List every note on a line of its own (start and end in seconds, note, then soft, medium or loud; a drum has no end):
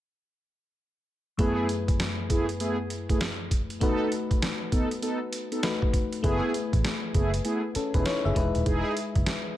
1.37 3.77 F#2 medium
1.37 3.77 A3 medium
1.37 1.67 A3 medium
1.37 1.67 B3 medium
1.37 3.77 E4 medium
1.37 1.68 E4 medium
1.37 1.68 G#4 medium
1.37 3.78 G#4 medium
1.37 3.78 B4 medium
1.37 kick loud
1.37 closed hi-hat medium
1.69 closed hi-hat medium
1.88 kick medium
1.88 closed hi-hat soft
2.00 snare loud
2.00 closed hi-hat medium
2.30 2.46 A3 medium
2.30 2.46 B3 medium
2.30 2.46 E4 medium
2.30 2.47 G#4 medium
2.30 kick medium
2.30 closed hi-hat medium
2.49 closed hi-hat soft
2.60 2.76 A3 medium
2.60 2.77 B3 medium
2.60 2.77 E4 medium
2.60 2.77 G#4 medium
2.60 closed hi-hat medium
2.90 closed hi-hat medium
3.09 3.19 A3 medium
3.09 3.19 B3 medium
3.09 3.19 E4 medium
3.09 3.20 G#4 medium
3.09 kick medium
3.09 closed hi-hat medium
3.21 snare loud
3.21 closed hi-hat medium
3.51 kick medium
3.51 closed hi-hat medium
3.70 closed hi-hat soft
3.80 5.59 A3 medium
3.80 4.10 B3 medium
3.80 4.10 D#4 medium
3.80 5.60 D#4 medium
3.80 5.60 F#4 medium
3.80 4.10 A4 loud
3.80 5.60 B4 medium
3.80 kick medium
3.80 closed hi-hat medium
4.12 closed hi-hat medium
4.31 kick medium
4.31 closed hi-hat medium
4.42 snare loud
4.42 closed hi-hat medium
4.72 4.88 B3 medium
4.72 4.89 D#4 medium
4.72 4.89 A4 medium
4.72 kick medium
4.72 closed hi-hat medium
4.91 closed hi-hat soft
5.02 5.19 B3 medium
5.02 5.19 D#4 medium
5.02 5.19 A4 medium
5.02 closed hi-hat medium
5.33 closed hi-hat medium
5.51 5.61 B3 medium
5.51 5.62 D#4 medium
5.51 5.62 A4 medium
5.51 closed hi-hat soft
5.63 6.21 A3 medium
5.63 6.24 D#4 soft
5.63 6.24 F#4 soft
5.63 6.24 B4 medium
5.63 snare loud
5.63 closed hi-hat medium
5.82 kick medium
5.93 kick medium
5.93 closed hi-hat medium
6.13 closed hi-hat soft
6.23 6.39 F#1 medium
6.23 8.31 A3 medium
6.23 6.52 A3 medium
6.23 6.52 B3 medium
6.23 7.72 E4 medium
6.23 6.52 E4 medium
6.23 6.52 G#4 loud
6.23 7.72 G#4 medium
6.23 7.73 B4 medium
6.23 kick loud
6.23 closed hi-hat medium
6.54 closed hi-hat medium
6.73 6.82 A1 medium
6.73 kick loud
6.73 closed hi-hat soft
6.84 snare loud
6.84 closed hi-hat medium
7.14 7.38 F#1 medium
7.14 7.31 A3 medium
7.14 7.31 B3 medium
7.14 7.31 E4 medium
7.14 7.31 G#4 medium
7.14 kick medium
7.14 closed hi-hat medium
7.34 closed hi-hat medium
7.45 7.61 A3 medium
7.45 7.61 B3 medium
7.45 7.61 E4 medium
7.45 7.62 G#4 medium
7.45 closed hi-hat medium
7.75 7.94 C#4 medium
7.75 7.94 A4 medium
7.75 muted fingered electric bass stroke soft
7.75 closed hi-hat medium
7.94 8.03 E1 medium
7.94 8.04 A3 medium
7.94 8.04 B3 medium
7.94 8.05 D#4 medium
7.94 8.04 E4 medium
7.94 8.04 G#4 medium
7.94 8.05 B4 medium
7.94 kick medium
7.94 closed hi-hat medium
8.05 8.24 E4 medium
8.05 8.24 C#5 medium
8.05 snare loud
8.05 closed hi-hat medium
8.25 8.34 F#1 medium
8.25 8.54 G#4 medium
8.25 8.54 E5 medium
8.35 8.51 E1 medium
8.35 9.57 G#3 medium
8.35 9.57 D#4 medium
8.35 9.57 E4 medium
8.35 9.57 B4 medium
8.35 kick medium
8.35 closed hi-hat medium
8.55 8.64 D#1 medium
8.55 closed hi-hat soft
8.66 8.81 E1 loud
8.66 8.95 D#4 medium
8.66 8.95 E4 medium
8.66 8.95 G#4 loud
8.66 kick loud
8.66 closed hi-hat medium
8.97 closed hi-hat medium
9.15 9.24 F#1 medium
9.15 kick medium
9.15 closed hi-hat soft
9.26 snare loud
9.26 closed hi-hat medium